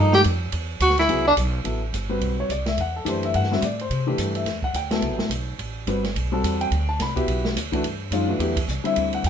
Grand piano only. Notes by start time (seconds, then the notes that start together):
Already playing: F3 A#3 D#4 A4
1.08 F#3 B3 E4 G#4
1.64 F#3 B3 E4 A4
2.09 G3 C4 F#4 B4
2.40 C#5
2.51 D5
2.68 E5
2.81 F#5
2.96 A4
3.05 E3 A3 D4 G4
3.09 C5
3.25 E5
3.35 F#5
3.51 D3 G3 C4 F#4 E5
3.65 D5
3.81 C5
4.07 E3 A3 D4 G4
4.36 E5
4.64 F#5
4.76 G5
4.91 F#3 B3 E4 A4
5.88 G3 C4 F#4 B4
6.32 G3 C4 F#4 A4
6.61 G5
6.89 A5
7.02 B5
7.16 B3 E4 F#4 G4
7.72 E3 A3 D4 F#4
8.12 D#3 G#3 C#4 F4
8.28 E3 A3 D4 F#4
8.39 F#3 B3 E4 G4
8.84 D3 G3 C4 E4 E5
9.15 F#5
9.26 G5